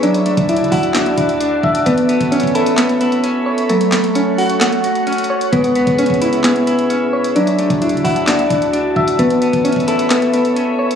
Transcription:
Already playing: ambient pad E5
0.03 clean electric guitar F#3, synth keys D4, ambient pad F#4 D5 A5, closed hi-hat
0.14 closed hi-hat
0.26 clean electric guitar A3, synth keys D4, closed hi-hat
0.37 808-style bass D2, kick, closed hi-hat
0.49 clean electric guitar D4, synth keys E4, closed hi-hat
0.56 808-style bass D3, closed hi-hat
0.64 closed hi-hat
0.71 808-style bass D2, clean electric guitar E4, synth keys F#4, kick, open hi-hat
0.83 closed hi-hat
0.94 synth keys D4, clean electric guitar F#4, snare, clap, closed hi-hat
1.06 closed hi-hat
1.18 808-style bass D2, synth keys D4, clean electric guitar E4, kick, closed hi-hat
1.29 closed hi-hat
1.41 clean electric guitar D4, closed hi-hat
1.63 808-style bass C#2, synth keys E5, kick
1.75 closed hi-hat
1.86 808-style bass A1, clean electric guitar A3, synth keys B3, ambient pad A4 C#5 B5, kick, closed hi-hat
1.98 closed hi-hat
2.09 synth keys B3, clean electric guitar B3, closed hi-hat
2.21 808-style bass A1, kick, closed hi-hat
2.31 synth keys C#4, clean electric guitar C#4, closed hi-hat
2.40 808-style bass A1, kick, closed hi-hat
2.47 closed hi-hat
2.55 clean electric guitar E4, synth keys A4, closed hi-hat
2.66 closed hi-hat
2.78 synth keys B3, clean electric guitar A4, snare, clap, closed hi-hat
2.89 closed hi-hat
3.01 synth keys B3, clean electric guitar E4, closed hi-hat
3.12 closed hi-hat
3.24 clean electric guitar C#4, closed hi-hat
3.46 synth keys C#5
3.58 closed hi-hat
3.69 clean electric guitar F#3, synth keys A3, ambient pad F#5 C#6, closed hi-hat
3.81 closed hi-hat
3.92 clean electric guitar A3, synth keys A3, snare, clap, closed hi-hat
4.04 closed hi-hat
4.15 clean electric guitar C#4, synth keys C#4, closed hi-hat
4.38 synth keys F#4, clean electric guitar F#4, open hi-hat
4.50 closed hi-hat
4.60 synth keys A3, clean electric guitar F#5, snare, clap, closed hi-hat
4.73 closed hi-hat
4.84 synth keys A3, clean electric guitar F#4, closed hi-hat
4.95 closed hi-hat
5.07 clean electric guitar C#4, closed hi-hat
5.13 closed hi-hat
5.18 closed hi-hat
5.24 closed hi-hat
5.30 synth keys C#5
5.41 closed hi-hat
5.52 808-style bass C#2, clean electric guitar G#3, synth keys B3, ambient pad G#4 E5 B5, kick, closed hi-hat
5.64 closed hi-hat
5.75 808-style bass D2, clean electric guitar B3, synth keys B3, closed hi-hat
5.87 808-style bass C#2, kick, closed hi-hat
5.98 clean electric guitar C#4, synth keys C#4, closed hi-hat
6.06 808-style bass C#2, kick, closed hi-hat
6.14 closed hi-hat
6.21 clean electric guitar E4, synth keys E4, closed hi-hat
6.33 closed hi-hat
6.44 synth keys B3, clean electric guitar G#4, snare, clap, closed hi-hat
6.56 closed hi-hat
6.67 synth keys B3, clean electric guitar E4, closed hi-hat
6.79 closed hi-hat
6.90 clean electric guitar C#4, closed hi-hat
7.13 synth keys C#5
7.24 closed hi-hat
7.36 clean electric guitar F#3, synth keys D4, ambient pad F#4 D5 A5, closed hi-hat
7.47 closed hi-hat
7.59 clean electric guitar A3, synth keys D4, closed hi-hat
7.70 808-style bass D2, kick, closed hi-hat
7.82 clean electric guitar D4, synth keys E4, closed hi-hat
7.89 808-style bass D3, closed hi-hat
7.97 closed hi-hat
8.04 808-style bass D2, clean electric guitar E4, synth keys F#4, kick, open hi-hat
8.16 closed hi-hat
8.27 synth keys D4, clean electric guitar F#4, snare, clap, closed hi-hat
8.39 closed hi-hat
8.50 808-style bass D2, synth keys D4, clean electric guitar E4, kick, closed hi-hat
8.62 closed hi-hat
8.73 clean electric guitar D4, closed hi-hat
8.96 808-style bass C#2, synth keys E5, kick
9.08 closed hi-hat
9.19 808-style bass A1, clean electric guitar A3, synth keys B3, ambient pad A4 C#5 E5 B5, kick, closed hi-hat
9.30 closed hi-hat
9.42 synth keys B3, clean electric guitar B3, closed hi-hat
9.53 808-style bass A1, kick, closed hi-hat
9.64 synth keys C#4, clean electric guitar C#4, closed hi-hat
9.72 808-style bass A1, kick, closed hi-hat
9.80 closed hi-hat
9.88 clean electric guitar E4, synth keys A4, closed hi-hat
9.99 closed hi-hat
10.10 synth keys B3, clean electric guitar A4, snare, clap, closed hi-hat
10.22 closed hi-hat
10.33 synth keys B3, clean electric guitar E4, closed hi-hat
10.45 closed hi-hat
10.56 clean electric guitar C#4, closed hi-hat
10.79 synth keys C#5
10.91 closed hi-hat

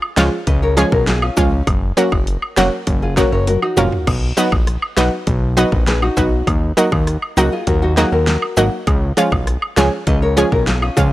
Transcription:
0.02 high woodblock
0.17 analog synth bass C#2, synth pluck F3 G#3 C#4 F4, snare, closed hi-hat, cabasa
0.47 analog synth bass C#2, nylon-string guitar B4 D#5, kick, closed hi-hat
0.62 nylon-string guitar A#4 C#5
0.77 synth pluck F3 G#3 C#4 G#4, nylon-string guitar G#4 B4, closed hi-hat, cabasa, high woodblock
0.92 analog synth bass B1, nylon-string guitar A#4, kick
1.07 nylon-string guitar F4 G#4, snare, closed hi-hat
1.22 nylon-string guitar C#4 F4, high woodblock
1.37 analog synth bass C#2, synth pluck F3 G#3 C#4 F4, kick, closed hi-hat, cabasa
1.67 analog synth bass F#1, kick, closed hi-hat, high woodblock
1.97 synth pluck F#3 A#3 C#4 F#4, closed hi-hat, cabasa
2.12 analog synth bass F#1, kick, high woodblock
2.27 closed hi-hat
2.42 high woodblock
2.57 analog synth bass F1, synth pluck F#3 A#3 C#4 F#4, snare, closed hi-hat, cabasa
2.87 analog synth bass F#1, kick, closed hi-hat
3.02 nylon-string guitar F4 G#4
3.17 synth pluck F#3 A#3 C#4 F#4, nylon-string guitar F#4 A#4, kick, snare, closed hi-hat, cabasa, high woodblock
3.32 analog synth bass F#1, nylon-string guitar A#4 C#5
3.47 nylon-string guitar F#4 A#4, closed hi-hat, high tom
3.62 nylon-string guitar D#4 F#4, high woodblock
3.77 analog synth bass F1, synth pluck F#3 A#3 C#4 F4, closed hi-hat, mid tom, cabasa
3.92 floor tom
4.07 analog synth bass B1, kick, crash, high woodblock
4.37 synth pluck F#3 B3 D#4 F#4, closed hi-hat, cabasa
4.52 analog synth bass A#1, kick, high woodblock
4.67 cross-stick, closed hi-hat
4.82 high woodblock
4.97 analog synth bass B1, synth pluck F#3 B3 D#4 F#4, snare, closed hi-hat, cabasa
5.27 analog synth bass B1, kick, closed hi-hat
5.57 synth pluck F#3 B3 D#4 F#4, nylon-string guitar B4 D#5, closed hi-hat, cabasa, high woodblock
5.72 analog synth bass A#1, kick
5.87 nylon-string guitar G#4 B4, snare, closed hi-hat
6.02 nylon-string guitar D#4 F#4, high woodblock
6.17 analog synth bass B1, synth pluck F#3 B3 D#4 F#4, kick, closed hi-hat, cabasa
6.47 analog synth bass D#2, kick, closed hi-hat, high woodblock
6.77 synth pluck F#3 A#3 D#4 F#4, closed hi-hat, cabasa
6.92 analog synth bass D#2, kick, high woodblock
7.07 cross-stick, closed hi-hat
7.22 high woodblock
7.37 analog synth bass C#2, synth pluck F#3 A#3 D#4 F#4, nylon-string guitar D#4 F#4, closed hi-hat, cabasa
7.52 nylon-string guitar F4 G#4
7.67 analog synth bass D#2, nylon-string guitar F#4 A#4, kick, closed hi-hat
7.82 nylon-string guitar D#4 F#4
7.97 synth pluck F#3 A#3 D#4 F#4, nylon-string guitar F4 G#4, snare, closed hi-hat, cabasa, high woodblock
8.12 analog synth bass D#2, nylon-string guitar F#4 A#4
8.27 snare, closed hi-hat
8.42 high woodblock
8.57 analog synth bass G#1, synth pluck F#3 A#3 D#4 F#4, closed hi-hat, cabasa
8.87 analog synth bass C#2, kick, closed hi-hat, high woodblock
9.17 synth pluck F3 G#3 C#4 F4, closed hi-hat, cabasa
9.32 analog synth bass B1, kick, high woodblock
9.47 cross-stick, closed hi-hat
9.62 high woodblock
9.77 analog synth bass C#2, synth pluck F3 G#3 C#4 G#4, snare, closed hi-hat, cabasa
10.07 analog synth bass C#2, nylon-string guitar B4 D#5, kick, closed hi-hat
10.22 nylon-string guitar A#4 C#5
10.37 synth pluck F3 G#3 C#4 G#4, nylon-string guitar G#4 B4, closed hi-hat, cabasa, high woodblock
10.52 analog synth bass B1, nylon-string guitar A#4, kick
10.67 nylon-string guitar F4 G#4, snare, closed hi-hat
10.82 nylon-string guitar C#4 F4, high woodblock
10.97 analog synth bass C#2, synth pluck F3 G#3 C#4 F4, kick, closed hi-hat, cabasa

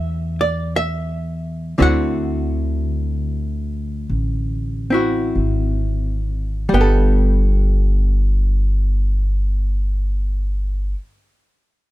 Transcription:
Already playing: upright bass E2, hollow-body jazz guitar A3 E4 G4 E5
0.41 hollow-body jazz guitar D5
0.76 hollow-body jazz guitar E5
1.78 upright bass D2, hollow-body jazz guitar D3 C4 E4 F#4
1.82 hollow-body jazz guitar F#5
4.09 upright bass A1
4.90 hollow-body jazz guitar C4 E4 F#4
5.35 upright bass G#1
6.69 upright bass G1, hollow-body jazz guitar G3
6.74 hollow-body jazz guitar B3 G5
6.81 hollow-body jazz guitar A4

